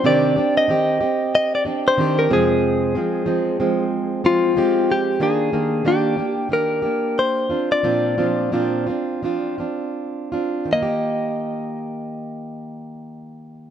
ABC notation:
X:1
M:4/4
L:1/16
Q:"Swing 16ths" 1/4=91
K:Eb
V:1 name="Clean electric guitar"
d3 e4- e e d2 c2 B A2- | A8- A2 F4 G2 | A4 G4 B4 c3 d- | d12 z4 |
e16 |]
V:2 name="Steel-string acoustic guitar"
[C,E,CDG]2 [CDG]2 [E,CG]2 [CG]4 [CDG]2 [E,CDG]2 [F,,C,F,A,C]2- | [F,,C,F,A,C]2 [F,A,C]2 [F,A,C]2 [F,A,C]4 [F,A,C]2 [F,A,CG]4 | [E,B,D]2 [E,B,D]2 [E,B,DG]2 [B,DG]2 [E,B,DG]2 [B,DG]4 [CDF]2 | [B,,F,CDF]2 [B,,F,CDF]2 [B,,F,CDF]2 [CDF]2 [F,CDF]2 [CDF]4 [CDF]2 |
[E,B,G]16 |]